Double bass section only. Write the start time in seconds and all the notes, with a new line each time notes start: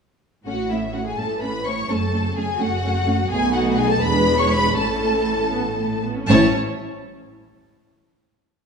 0.47 A1
1.18 A1
1.90 F#1
2.60 F#1
3.30 B1
4.02 E1
4.76 A1
6.29 A1